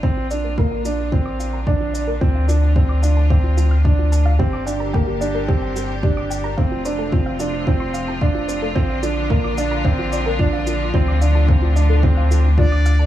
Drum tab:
SH |-x-x-x-x|-x-x-x-x|-x-x-x-x|-x-x-x-x|
BD |o-o-o-o-|o-o-o-o-|o-o-o-o-|o-o-o-o-|

SH |-x-x-x-x|-x-x-x-x|
BD |o-o-o-o-|o-o-o-o-|